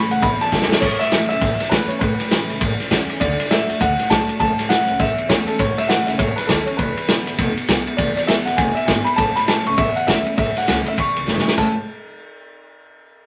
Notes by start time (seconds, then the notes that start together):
Already playing: A2 E3 A3 C#4 E4 B5
0.11 C#2 F#5, ride
0.22 A1 E2 B5, kick, ride
0.41 A5, muted upright bass stroke, snare, ride
0.52 E2 E3 A3 C#4 E4, kick, snare
0.62 snare
0.69 C#4 E4 A4, muted upright bass stroke, snare
0.80 A1 A2 C#5, kick, crash
0.99 E5, muted upright bass stroke, snare, ride
1.11 E2 E3 A3 C#4 E4, snare, ride
1.29 C#2 C#4 E4 E5, snare, ride
1.41 A1 E2, kick, snare, ride
1.59 muted upright bass stroke, snare, ride
1.70 E2 E3 A3 C#4 E4 B4, kick, snare, ride
1.88 C#4 E4 C#5, muted upright bass stroke, ride
1.99 A1 A2 B4, kick, ride
2.19 muted upright bass stroke, snare, ride
2.31 E2 E3 A3 C#4 E4, snare, ride
2.49 C#2 C#4 E4, snare, ride
2.61 A1 E2, kick, ride
2.80 snare, ride
2.90 E2 E3 A3 C#4 E4, kick, snare, ride
3.09 muted upright bass stroke, ride
3.20 D2 D3 D5, kick, ride
3.39 muted upright bass stroke, snare, ride
3.50 A2 D3 A3 D4 F#4 E5, snare, ride
3.68 F#2 D4 F#4, ride
3.80 D2 A2 F#5, kick, ride
3.99 muted upright bass stroke, snare, ride
4.09 B1 D3 A3 D4 F#4 A5, kick, snare, ride
4.27 D4 F#4, muted upright bass stroke, ride
4.39 A1 A2 A5, kick, ride
4.58 muted upright bass stroke, snare, ride
4.68 E2 E3 A3 C#4 E4 F#5, snare, ride
4.87 C#2 C#4 E4, ride
4.99 A1 E2 E5, kick, snare, ride
5.18 muted upright bass stroke, ride
5.29 E2 E3 A3 C#4 E4 C#5, kick, snare, ride
5.47 C#4 E4 A4, muted upright bass stroke, ride
5.59 A1 A2 C#5, kick, ride
5.78 E5, muted upright bass stroke, snare, ride
5.88 E2 E3 A3 C#4 E4 F#5, snare, ride
6.07 C#2 C#4 E4 E5, snare, ride
6.18 A1 E2 C#5, kick, snare, ride
6.36 B4, muted upright bass stroke, snare, ride
6.47 D#2 E3 A3 C#4 E4 A4, kick, snare, ride
6.66 C#4 E4 C#5, muted upright bass stroke, ride
6.77 E1 E2 B4, kick, ride
6.97 muted upright bass stroke, ride
7.08 B1 D3 G#3 B3 E4, snare, ride
7.26 G#1 B3 E4, snare, ride
7.38 E1 B2, kick, snare, ride
7.57 muted upright bass stroke, ride
7.68 B1 D3 G#3 B3 E4, kick, snare, ride
7.86 B3 E4, muted upright bass stroke, ride
7.97 E1 E2 D5, kick, ride
8.16 D5, muted upright bass stroke, snare, ride
8.27 B1 D3 G#3 B3 E4 E5, snare, ride
8.45 G#1 B3 E4 F#5, snare, ride
8.57 E1 B2 G#5, kick, snare, ride
8.75 E5, ride
8.86 G#1 D3 G#3 B3 E4 G#5, kick, snare, ride
9.05 B3 E4 B5, ride
9.16 A1 A2 A5, kick, ride
9.36 B5, muted upright bass stroke, snare, ride
9.47 E2 E3 A3 C#4 E4 A5, snare, ride
9.66 C#2 C#4 E4 C#6, ride
9.78 A1 E2 E5, kick, ride
9.96 F#5, muted upright bass stroke, ride
10.07 E2 E3 A3 C#4 E4 E5, kick, snare, ride
10.26 C#4 E4, muted upright bass stroke, ride
10.37 A1 A2 E5, kick, ride
10.56 F#5, muted upright bass stroke, snare, ride
10.67 C#2 E3 A3 C#4 E4 F#5, snare, ride
10.85 C#4 E4 E5, muted upright bass stroke, ride
10.97 E2 C#6, kick, ride
11.16 C#2, ride
11.27 F#1 E3 A3 C#4 E4, snare
11.38 snare
11.46 C#4 E4, muted upright bass stroke, snare
11.57 A1 A2 E3 A3 C#4 E4 A5, kick, crash